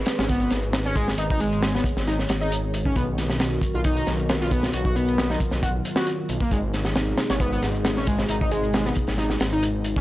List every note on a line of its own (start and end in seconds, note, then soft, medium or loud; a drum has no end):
0.00 10.01 D#3 medium
0.00 2.93 G#3 medium
0.00 6.48 B3 medium
0.00 2.92 G#4 medium
0.00 1.17 B4 medium
0.06 snare medium
0.06 closed hi-hat medium
0.06 shaker medium
0.18 0.47 G#1 medium
0.18 0.24 C#4 medium
0.18 snare medium
0.18 closed hi-hat medium
0.18 shaker soft
0.29 0.40 B3 medium
0.29 kick loud
0.29 closed hi-hat medium
0.29 shaker soft
0.40 0.50 B3 loud
0.40 closed hi-hat soft
0.50 1.14 G#1 medium
0.50 snare soft
0.50 closed hi-hat medium
0.50 shaker medium
0.63 shaker soft
0.73 snare loud
0.73 closed hi-hat medium
0.73 shaker soft
0.85 0.95 C#4 loud
0.85 snare soft
0.96 1.07 G#3 loud
0.96 kick medium
0.96 closed hi-hat medium
0.96 shaker medium
1.08 snare medium
1.08 shaker soft
1.17 1.81 G#1 loud
1.17 1.24 D#4 medium
1.17 2.94 C#5 medium
1.17 closed hi-hat medium
1.17 shaker soft
1.30 1.40 D#4 medium
1.30 kick loud
1.40 1.73 G#3 medium
1.40 closed hi-hat medium
1.40 shaker medium
1.52 shaker soft
1.63 snare loud
1.63 closed hi-hat medium
1.63 shaker soft
1.75 1.80 B3 medium
1.75 snare soft
1.84 kick medium
1.84 closed hi-hat medium
1.84 shaker medium
1.97 2.25 G#1 medium
1.97 snare soft
1.97 shaker soft
2.07 2.13 D#4 medium
2.07 snare soft
2.07 closed hi-hat medium
2.07 shaker soft
2.19 snare soft
2.29 2.92 G#1 medium
2.29 snare loud
2.29 closed hi-hat medium
2.29 shaker medium
2.41 2.51 D#4 loud
2.41 shaker soft
2.52 closed hi-hat medium
2.52 shaker soft
2.74 closed hi-hat medium
2.74 shaker medium
2.85 2.95 C#4 medium
2.85 kick medium
2.85 shaker soft
2.96 3.59 B1 loud
2.96 6.48 F#3 medium
2.96 3.02 B3 medium
2.96 4.72 F#4 medium
2.96 6.48 A#4 medium
2.96 kick loud
2.96 closed hi-hat medium
2.96 shaker soft
3.18 snare soft
3.18 closed hi-hat medium
3.18 shaker medium
3.30 snare medium
3.30 shaker soft
3.40 snare loud
3.40 closed hi-hat medium
3.40 shaker soft
3.61 kick medium
3.61 closed hi-hat medium
3.61 shaker medium
3.74 4.03 B1 medium
3.74 3.80 F4 medium
3.74 shaker soft
3.84 3.96 D#4 medium
3.84 kick loud
3.84 closed hi-hat medium
3.84 shaker soft
3.97 4.06 D#4 loud
3.97 closed hi-hat soft
4.07 4.70 B1 medium
4.07 snare soft
4.07 closed hi-hat medium
4.07 shaker medium
4.19 shaker soft
4.29 snare loud
4.29 closed hi-hat medium
4.29 shaker soft
4.41 4.51 F4 loud
4.41 snare soft
4.51 4.63 B3 loud
4.51 kick loud
4.51 closed hi-hat medium
4.51 shaker medium
4.63 snare medium
4.63 shaker soft
4.73 5.37 B1 medium
4.73 6.50 F4 medium
4.73 4.80 F#4 medium
4.73 closed hi-hat medium
4.73 shaker soft
4.85 4.95 F#4 medium
4.85 kick medium
4.96 5.29 B3 medium
4.96 closed hi-hat medium
4.96 shaker medium
5.08 shaker soft
5.18 snare loud
5.18 closed hi-hat medium
5.18 shaker soft
5.30 5.35 D#4 medium
5.30 snare medium
5.40 kick medium
5.40 closed hi-hat medium
5.40 shaker medium
5.51 5.81 B1 medium
5.51 snare soft
5.51 shaker soft
5.63 5.69 F#4 medium
5.63 kick loud
5.63 closed hi-hat medium
5.63 shaker soft
5.85 closed hi-hat medium
5.85 shaker medium
5.96 6.06 F#4 loud
5.96 snare loud
5.96 shaker soft
6.06 closed hi-hat medium
6.06 shaker soft
6.29 6.38 B1 loud
6.29 closed hi-hat medium
6.29 shaker medium
6.40 6.51 A#3 medium
6.40 kick medium
6.40 shaker soft
6.51 7.14 G#1 medium
6.51 10.01 B2 medium
6.51 10.01 G#3 medium
6.51 6.58 G#3 medium
6.51 10.01 D#4 medium
6.51 10.01 G#4 medium
6.51 kick loud
6.51 closed hi-hat medium
6.51 shaker soft
6.74 snare soft
6.74 closed hi-hat medium
6.74 shaker medium
6.85 snare medium
6.85 shaker soft
6.96 snare loud
6.96 closed hi-hat medium
6.96 shaker soft
7.18 snare loud
7.18 closed hi-hat medium
7.18 shaker medium
7.30 7.59 G#1 medium
7.30 7.35 C#4 medium
7.30 snare medium
7.30 closed hi-hat medium
7.30 shaker soft
7.40 7.51 B3 medium
7.40 kick loud
7.40 closed hi-hat medium
7.40 shaker soft
7.52 7.61 B3 loud
7.52 closed hi-hat soft
7.62 8.25 G#1 medium
7.62 snare soft
7.62 closed hi-hat medium
7.62 shaker medium
7.74 shaker soft
7.85 snare loud
7.85 closed hi-hat medium
7.85 shaker soft
7.96 8.06 C#4 loud
7.96 snare soft
8.07 8.19 G#3 loud
8.07 kick medium
8.07 closed hi-hat medium
8.07 shaker medium
8.19 snare medium
8.19 shaker soft
8.29 8.92 G#1 medium
8.29 8.35 D#4 medium
8.29 closed hi-hat medium
8.29 shaker soft
8.41 8.50 D#4 medium
8.41 kick medium
8.51 8.84 G#3 medium
8.51 closed hi-hat medium
8.51 shaker medium
8.63 shaker soft
8.73 snare loud
8.73 closed hi-hat medium
8.73 shaker soft
8.85 8.91 B3 medium
8.85 snare soft
8.95 kick medium
8.95 closed hi-hat medium
8.95 shaker medium
9.07 9.36 G#1 medium
9.07 snare soft
9.07 shaker soft
9.18 9.24 D#4 medium
9.18 snare soft
9.18 closed hi-hat medium
9.18 shaker soft
9.30 snare soft
9.40 10.01 G#1 medium
9.40 snare medium
9.40 closed hi-hat medium
9.40 shaker medium
9.52 9.62 D#4 loud
9.52 shaker soft
9.63 closed hi-hat medium
9.63 shaker soft
9.84 closed hi-hat medium
9.84 shaker medium
9.96 10.01 C#4 medium
9.96 kick medium
9.96 shaker soft